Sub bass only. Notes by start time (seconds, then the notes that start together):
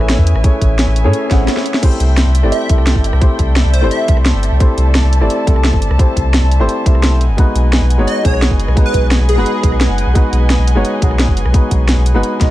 Already playing: A1
0.18 E2
0.35 A1
0.61 A1
0.87 A1
1.05 A2
1.31 A1
2.00 C2
2.26 C2
2.44 G1
2.70 C2
2.96 G1
3.13 C2
3.39 C2
3.65 C2
3.82 G1
4.08 C2
4.34 G1
4.52 C2
4.78 C2
5.04 C2
5.21 G1
5.47 C2
5.73 G1
5.90 C2
6.17 C2
6.43 C2
6.60 G1
6.86 C2
7.12 B1
7.29 F#1
7.55 B1
7.81 B1
7.99 F#1
8.25 B1
8.51 F#1
8.68 B1
8.94 B1
9.20 B1
9.37 F#1
9.63 B1
9.89 F#1
10.07 B1
10.33 B1
10.59 B1
10.76 F#1
11.02 B1
11.28 F#1
11.45 B1
11.71 B1
11.97 B1
12.15 F#1
12.41 B1